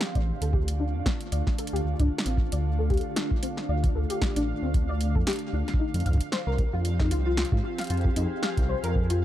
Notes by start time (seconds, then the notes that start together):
Already playing: D3 A3 C4 D4 F4 G4 F5
0.01 snare
0.15 A1 D5, kick, closed hi-hat
0.42 D2 A4, closed hi-hat
0.53 G4, kick
0.68 closed hi-hat
0.80 D4
0.94 F2
1.06 C4, kick, snare
1.21 closed hi-hat
1.32 D2 D5, closed hi-hat
1.47 kick, snare
1.58 A4, closed hi-hat
1.67 closed hi-hat
1.73 D2 G4, closed hi-hat
1.85 D2
2.00 D4, kick, closed hi-hat
2.02 kick
2.05 kick
2.08 kick
2.18 snare
2.26 A1 C4, closed hi-hat
2.37 kick
2.52 D2 D5, closed hi-hat
2.79 A4
2.90 G4, kick, closed hi-hat
2.94 closed hi-hat
2.97 closed hi-hat
3.01 closed hi-hat
3.16 D4, snare, closed hi-hat
3.31 kick
3.43 C4, closed hi-hat
3.57 snare
3.69 D2 D5
3.84 kick, closed hi-hat
3.95 D2 A4
4.10 G4, closed hi-hat
4.22 kick, snare
4.36 A1 D4, closed hi-hat
4.63 D2 C4
4.74 kick, closed hi-hat
4.89 D5
5.01 closed hi-hat
5.15 F2 A4, kick
5.27 G4, snare, closed hi-hat
5.30 closed hi-hat
5.36 closed hi-hat
5.39 closed hi-hat
5.53 D2 D4
5.68 snare, closed hi-hat
5.74 kick
5.80 F3 D#4
5.94 F2, closed hi-hat
6.00 closed hi-hat
6.06 F2 G4 F5, kick, closed hi-hat
6.09 kick
6.12 kick, closed hi-hat
6.15 kick
6.18 C4, kick, closed hi-hat
6.32 C5, snare
6.47 C2 A#4
6.58 kick, closed hi-hat
6.73 F2 F4
6.85 closed hi-hat
7.00 D#4, kick, snare
7.11 C2 F4, closed hi-hat
7.26 F4 G#4
7.37 F4, snare
7.45 closed hi-hat
7.52 G#2 F4, kick
7.64 F4
7.78 F5, snare, closed hi-hat
7.81 closed hi-hat
7.84 closed hi-hat
7.87 closed hi-hat
7.90 F2 F4, closed hi-hat
7.97 closed hi-hat
8.01 kick, closed hi-hat
8.16 F2 D#4, closed hi-hat
8.43 F5, snare
8.57 C2, kick, closed hi-hat
8.69 C5
8.84 F2 A#4, closed hi-hat
8.95 kick
9.10 F4, closed hi-hat